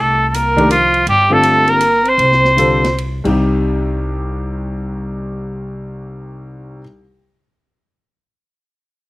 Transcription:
Already playing: upright bass C2
0.00 trombone A3, trumpet A4
0.29 trombone A3, trumpet A4
0.34 trombone A#3, trumpet A#4, hi-hat pedal, ride
0.56 grand piano D#3 A3 D4 G4 A#4, kick, ride
0.71 trombone F3, trumpet F4, hi-hat pedal, ride
0.94 ride
1.07 upright bass G1, trombone G3, trumpet G4, ride
1.30 grand piano D3 G3 C4 F4 A4, trombone A3, trumpet A4
1.43 hi-hat pedal, ride
1.67 trombone A#3, trumpet A#4, ride
1.81 hi-hat pedal, ride
2.05 trombone C4, trumpet C5, ride
2.18 upright bass C2, ride
2.32 snare
2.45 snare
2.57 grand piano D3 G3 C4 F4 A4, hi-hat pedal, ride
2.84 snare, ride
2.98 ride
3.24 grand piano C2 C3 G3 D#4 G4, upright bass C2, kick, crash

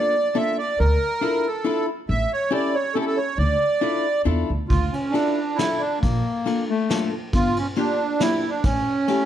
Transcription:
Already playing: hollow-body jazz guitar A#3 D4 F4 A4, accordion D5
0.35 hollow-body jazz guitar A#3 D4 F4 A4, accordion E5
0.58 accordion D5
0.80 upright bass D2, accordion A#4
1.21 hollow-body jazz guitar D4 E4 F4 A4
1.47 accordion A4
1.65 hollow-body jazz guitar D4 E4 F4 A4
2.09 upright bass A1, accordion E5
2.33 accordion C#5
2.51 hollow-body jazz guitar C#4 E4 G4 A4, accordion D5
2.75 accordion C#5
2.94 hollow-body jazz guitar C#4 E4 G4 A4, accordion A4
2.99 accordion A4
3.07 accordion A4
3.17 accordion C#5
3.38 upright bass D2, accordion D5
3.81 hollow-body jazz guitar D4 E4 F4 A4
4.25 upright bass E2, hollow-body jazz guitar D4 E4 F4 A4
4.50 upright bass D2
4.68 upright bass D2, accordion F4, kick, ride
4.92 accordion C#4, ride
5.10 accordion D4, hollow-body jazz guitar D4
5.14 hollow-body jazz guitar E4 F4 A4, ride
5.55 hollow-body jazz guitar D4, accordion E4, snare, ride
5.59 hollow-body jazz guitar E4 F4 A4
5.78 accordion D4
6.00 upright bass A#1, accordion A#3, kick, ride
6.46 hollow-body jazz guitar A#3 D4 F4 A4, ride
6.70 accordion A3
6.90 hollow-body jazz guitar A#3 D4 F4 A4, snare, ride
7.33 upright bass G1, accordion F4, kick, ride
7.56 accordion C#4, ride
7.76 hollow-body jazz guitar A#3 D4 F4 G4, accordion D4, ride
8.20 hollow-body jazz guitar A#3 D4 F4 G4, accordion E4, snare, ride
8.49 accordion D4
8.64 upright bass A1, accordion C#4, kick, ride
9.08 hollow-body jazz guitar A3 C#4 E4 G4, ride

